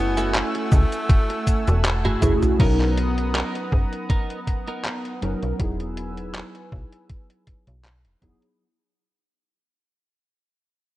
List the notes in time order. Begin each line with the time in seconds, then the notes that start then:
Already playing: F#1 A3 B3 C#4 E4 F#4 F#5 G#5 E6
0.17 A3 E4 F#4 A4, closed hi-hat, cabasa
0.34 A3, clap, closed hi-hat, cabasa
0.55 muted clean electric guitar stroke, closed hi-hat
0.72 C#2, kick, cabasa
0.92 closed hi-hat, cabasa
1.09 muted clean electric guitar stroke, kick, closed hi-hat, cabasa
1.30 muted clean electric guitar stroke, closed hi-hat
1.47 kick, closed hi-hat, cabasa
1.68 E1, closed hi-hat, cabasa
1.85 clap, closed hi-hat, cabasa
2.05 F#1 A3 E4 F#4 G#4, closed hi-hat, high tom
2.21 F#1 A3 C#4 E4 F#4 G#4, kick, closed hi-hat, mid tom, cabasa
2.42 closed hi-hat, mid tom, cabasa
2.58 B1 F#3 B3 C#4 D#4 A#4 F#5 A#5 D#6, kick, closed hi-hat, crash
2.80 clap, closed hi-hat
2.97 closed hi-hat
3.18 closed hi-hat
3.35 B3 D#4 A#4, clap, closed hi-hat
3.55 closed hi-hat
3.72 F#1, muted clean electric guitar stroke, kick
3.93 closed hi-hat
4.10 B3 D#4 A#4, kick, closed hi-hat
4.30 closed hi-hat
4.47 kick, closed hi-hat
4.67 B3 D#4 A#4, closed hi-hat
4.85 clap, closed hi-hat
5.05 closed hi-hat
5.21 F#1 F#3 B3 C#4 D#4 A#4, closed hi-hat
5.43 B1, closed hi-hat
5.58 E1 F#3 B3 D#4 E4 G#4 B4 G#5 E6, kick, closed hi-hat
5.80 closed hi-hat
5.97 closed hi-hat
6.17 closed hi-hat
6.35 clap, closed hi-hat
6.55 closed hi-hat
6.72 B1, kick
6.92 closed hi-hat
7.10 kick, closed hi-hat
7.30 closed hi-hat
7.47 kick, closed hi-hat
7.67 B1, closed hi-hat
7.85 clap, closed hi-hat
8.05 E1, closed hi-hat
8.21 E1 F#3 B3 D#4 E4 G#4, kick, closed hi-hat
8.42 closed hi-hat